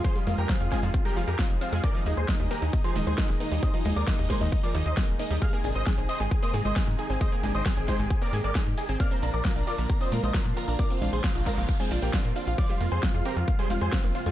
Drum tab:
CC |----------------|----------------|----------------|----------------|
HH |xxoxxxoxxxoxxxox|xxoxxxoxxxoxxxox|xxoxxxoxxxoxxxox|xxoxxxoxxxoxxxox|
SD |----o-o-----o---|----o-------oo--|----o-o-----o---|----o-------oo--|
CG |--o---o---------|----------oo----|--o---o---------|----------oo----|
BD |o---o-o-o---o---|o---o---o---o---|o---o-o-o---o---|o---o---o---o---|

CC |----------------|----------------|----------------|x---------------|
HH |xxoxxxoxxxoxxxox|xxoxxxoxxxoxxxox|xxoxxxoxxxoxxxox|xxoxxxoxxxoxxxox|
SD |----o-o-----o---|----o-------oo--|----o-o-----o---|----o-------oo--|
CG |--o---o---------|----------oo----|--o---o--o------|----------oo----|
BD |o---o-o-o---o---|o---o---o---o---|o---o-o-o---o---|o---o---o---o---|